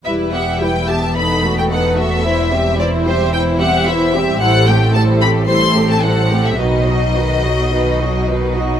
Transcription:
<<
  \new Staff \with { instrumentName = "Violin section" } { \time 4/4 \key e \minor \tempo 4 = 110 e''8 fis''8 g''8 a''8 b''8. g''16 fis''8 e''8~ | e''4 d''8 c''8 g''8 fis''8 e''4 | fis''8 g''8 a''8 b''8 c'''8. a''16 fis''8. e''16 | dis''2.~ dis''8 r8 | }
  \new Staff \with { instrumentName = "Violin section" } { \time 4/4 \key e \minor <e' b'>8 <g' e''>8 <e' b'>8 <g' e''>8 <a' b'>8 <fis' a'>8 <a' b'>8 <fis' a'>8 | <e' c''>8 <g' e''>8 <e' c''>8 <g' e''>8 <e' c''>8 <g' e''>8 <e' c''>8 <g' e''>8 | <a' c''>8 <g' a'>8 <a' c''>8 <g' a'>8 <a' c''>8 <g' a'>8 <a' c''>8 <g' a'>8 | <dis' b'>8 <fis' dis''>8 <dis' b'>8 <fis' dis''>8 <dis' b'>8 <fis' dis''>8 <dis' b'>8 <fis' dis''>8 | }
  \new Staff \with { instrumentName = "Viola section" } { \time 4/4 \key e \minor <g e'>8 <b g'>8 <g e'>8 <b g'>8 <b dis'>8 <a b>8 <b dis'>8 <a b>8 | <e e'>8 <g c'>8 <e e'>8 <g c'>8 <e e'>8 <g c'>8 <e e'>8 <g c'>8 | <g e'>8 <a c'>8 <g e'>8 <a c'>8 <g e'>8 <a c'>8 <g e'>8 <a c'>8 | <dis fis'>8 <fis dis'>8 <dis fis'>8 <fis dis'>8 <dis fis'>8 <fis dis'>8 <dis fis'>8 <fis dis'>8 | }
  \new Staff \with { instrumentName = "Cello section" } { \clef bass \time 4/4 \key e \minor e,1~ | e,1 | a,1 | b,1 | }
  \new Staff \with { instrumentName = "Double bass section" } { \clef bass \time 4/4 \key e \minor e,,1~ | e,,1 | a,,1 | b,,1 | }
>>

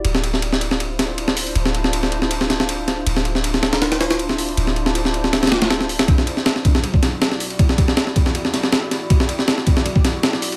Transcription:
<<
  \new Staff \with { instrumentName = "Ambient pad" } { \time 4/4 \key e \phrygian \tempo 4 = 159 <d' e' f' c''>1~ | <d' e' f' c''>1 | <d' e' f' c''>1~ | <d' e' f' c''>1 |
r1 | r1 | r1 | }
  \new Staff \with { instrumentName = "808-style bass" } { \clef bass \time 4/4 \key e \phrygian d,,1 | d,,1 | d,,1 | d,,1 |
e,,4. e,8 b,,2~ | b,,4. e,4 b,,8 a,,4 | e,,4. e,8 b,,2 | }
  \new DrumStaff \with { instrumentName = "Drums" } \drummode { \time 4/4 cymr16 sn16 cymr16 sn16 cymr16 sn16 cymr16 sn16 cymr8 <cymr sn>8 cymr16 sn16 hho16 cymr16 | cymr16 sn16 cymr16 sn16 cymr16 sn16 cymr16 sn16 cymr16 sn16 <cymr sn>16 sn16 cymr8 <cymr sn>8 | cymr16 sn16 cymr16 sn16 cymr16 sn16 <cymr sn>16 <cymr sn>16 <cymr sn>16 <cymr sn>16 <cymr sn>16 <cymr sn>16 cymr16 sn16 hho16 cymr16 | cymr16 sn16 cymr16 sn16 cymr16 sn16 cymr16 sn16 <cymr sn>16 <cymr sn>32 <cymr sn>32 <cymr sn>16 <cymr sn>16 <cymr sn>16 sn16 hho16 <cymr sn>16 |
<bd cymr>16 sn16 cymr16 sn16 <cymr sn>16 sn16 <bd cymr>16 sn16 cymr16 bd16 <cymr sn>8 <cymr sn>16 sn16 hho16 cymr16 | <bd cymr>16 sn16 <bd cymr>16 sn16 <cymr sn>16 sn16 <bd cymr>16 sn16 cymr16 sn16 <cymr sn>16 sn16 <cymr sn>8 <cymr sn>8 | <bd cymr>16 sn16 cymr16 sn16 <cymr sn>16 sn16 <bd cymr>16 sn16 cymr16 bd16 <cymr sn>8 <cymr sn>16 sn16 hho16 cymr16 | }
>>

